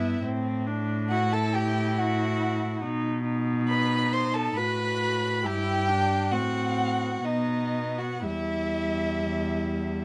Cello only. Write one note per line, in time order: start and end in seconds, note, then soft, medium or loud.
0.00 0.19 G2 medium
0.24 2.84 A2 medium
2.83 4.56 B2 medium
4.57 5.46 A2 medium
5.44 6.33 G2 medium
6.31 7.23 A2 medium
7.24 8.26 B2 medium
8.24 10.05 E2 medium